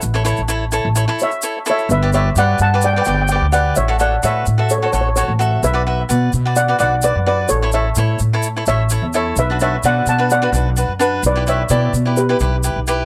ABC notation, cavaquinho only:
X:1
M:4/4
L:1/16
Q:1/4=128
K:Amix
V:1 name="Cavaquinho"
z [EAc] [EAc] z [EAc] z [EAc] z [EAc] [EAc]2 z [EAc] z [EAc]2 | z [GBd] [GBd] z [GBd]2 z [GBd] z [GBd] [GBd] z [GBd] z [GBd]2 | z [FAc] [FAc] z [FAB]2 z [FAe] z [FAc] [FAc] z [FAc] z [FAe]2 | z [FBd] [FBe] z [FBd]2 z [FBd] z [FBd] [FBd] z [FBd] z [FBd]2 |
z [EAc] [EAc] z [EAc]2 z [EAc] z [EAc] [EAc] z [EAc] z [EAc]2 | z [DFB] [DFB] z [DFB]2 z [DFB] z [DFB] [DFB] z [DFB] z [DFB]2 | z [EGB] [EGB] z [EGd]2 z [EGB] z [EGB] [EGB] z [EGB] z [EGB]2 |]